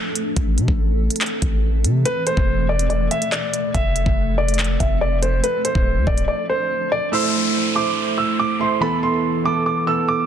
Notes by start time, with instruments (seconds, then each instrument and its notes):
Already playing: ambient pad F3 A3 D4 A4
0.15 closed hi-hat
0.36 808-style bass A1, ambient pad E3 C4, kick, closed hi-hat
0.58 808-style bass C3, closed hi-hat
0.68 808-style bass A1, kick
1.10 closed hi-hat
1.16 closed hi-hat
1.21 clap, closed hi-hat
1.26 closed hi-hat
1.42 808-style bass A1, kick, closed hi-hat
1.84 808-style bass C3, closed hi-hat
2.05 ambient pad B2, grand piano B4, closed hi-hat
2.27 grand piano C5, closed hi-hat
2.37 808-style bass E1, kick
2.69 grand piano D5
2.79 closed hi-hat
2.90 grand piano D5, closed hi-hat
3.11 grand piano E5, closed hi-hat
3.22 closed hi-hat
3.32 grand piano D5, clap, closed hi-hat
3.54 closed hi-hat
3.74 808-style bass F1, ambient pad F3 A3 C4 A4, grand piano E5, kick, closed hi-hat
3.96 closed hi-hat
4.06 808-style bass F1, kick
4.38 grand piano D5
4.49 closed hi-hat
4.54 closed hi-hat
4.59 clap, closed hi-hat
4.64 closed hi-hat
4.80 808-style bass F1, grand piano E5, kick, closed hi-hat
5.01 grand piano D5
5.22 grand piano C5, closed hi-hat
5.43 ambient pad F3 D4, grand piano B4, closed hi-hat
5.65 grand piano C5, closed hi-hat
5.75 808-style bass D1, kick
5.96 808-style bass D2
6.07 808-style bass D1, grand piano D5, kick
6.18 closed hi-hat
6.28 grand piano D5
6.49 grand piano C5
6.92 grand piano D5
7.12 synth keys A3 E4 C5, grand piano E6, downlifter
7.75 synth keys A3 E4 C5, grand piano D6
8.18 grand piano E6
8.39 grand piano D6
8.59 synth keys A3 E4 C5, grand piano C6
8.81 synth keys E3 B3 A4, grand piano B5
9.03 grand piano C6
9.44 synth keys E3 B3 A4, grand piano D6
9.66 grand piano D6
9.86 synth keys E3 B3 A4, grand piano E6
10.08 grand piano D6